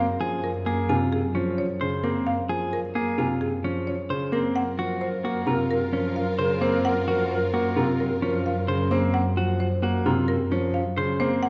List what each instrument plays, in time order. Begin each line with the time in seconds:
Already playing: double bass section F#2
0.00 marimba F5
0.20 grand piano F3, clean electric guitar G#4
0.44 marimba A#4
0.66 grand piano A#3, clean electric guitar G#4
0.89 grand piano C3, clean electric guitar F4, marimba G#5
1.13 marimba G#4
1.35 grand piano F3, clean electric guitar C#4
1.58 marimba C#5
1.81 grand piano C#3, clean electric guitar C5
2.04 grand piano A#3, clean electric guitar C4, marimba A#4
2.27 marimba F5
2.49 grand piano F3, clean electric guitar G#4
2.73 marimba A#4
2.95 grand piano A#3, clean electric guitar G#4
3.18 grand piano C3, clean electric guitar F4, marimba G#5
3.41 marimba G#4
3.64 grand piano F3, clean electric guitar C#4
3.87 marimba C#5
4.10 grand piano C#3, clean electric guitar C5
4.32 grand piano A#3, clean electric guitar C4, marimba A#4
4.55 double bass section F#2, string section F4 A#4, alto flute A#4, marimba F#5
4.78 grand piano F3, clean electric guitar F#4, alto flute A#4
5.01 alto flute A#4, marimba C5
5.24 grand piano A#3, clean electric guitar F#4, alto flute A#4
5.47 grand piano C3, clean electric guitar F4, alto flute A#4, marimba A#5
5.71 marimba A#4, alto flute A#4
5.93 grand piano F3, clean electric guitar C#4, alto flute A#4
6.16 alto flute A#4, marimba F5
6.39 grand piano C#3, alto flute A#4, clean electric guitar C5
6.61 grand piano A#3, clean electric guitar C4, alto flute A#4, marimba C5
6.85 alto flute A#4, marimba F#5
7.08 grand piano F3, clean electric guitar F#4, alto flute A#4
7.31 alto flute A#4, marimba C5
7.53 grand piano A#3, clean electric guitar F#4, alto flute A#4
7.76 grand piano C3, clean electric guitar F4, alto flute A#4, marimba A#5
7.99 alto flute A#4, marimba A#4
8.22 grand piano F3, clean electric guitar C#4, alto flute A#4
8.45 alto flute A#4, marimba F5
8.68 grand piano C#3, alto flute A#4, clean electric guitar C5
8.91 grand piano A#3, clean electric guitar C4, marimba C5
9.14 marimba F#5
9.37 grand piano F3, clean electric guitar F#4
9.60 marimba C5
9.82 grand piano A#3, clean electric guitar F#4
10.06 grand piano C3, clean electric guitar F4, marimba A#5
10.28 marimba A#4
10.51 grand piano F3, clean electric guitar C#4
10.74 marimba F5
10.97 grand piano C#3, clean electric guitar C5
11.20 grand piano A#3, clean electric guitar C4, marimba C5
11.43 marimba F#5